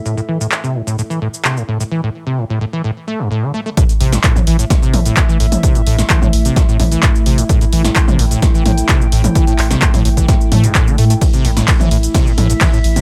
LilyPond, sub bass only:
\new Staff \with { instrumentName = "Sub bass" } { \clef bass \time 4/4 \key a \minor \tempo 4 = 129 r1 | r1 | r8 a,,16 r8 a,,16 a,,16 r8. a,,16 r8. a,,16 r16 | r8 a,,16 r8 a,,16 a,,16 r8. a,,16 r8. a,,16 r16 |
r8 a,,16 r8 a,,16 a,,16 r8. a,,16 r8. a,,16 r16 | r8 a,,16 r8 a,,16 a,,16 r8. a,16 r8. a,16 r16 | r8 a,,16 r8 a,,16 a,,16 r8. a,,16 r8. a,,16 r16 | }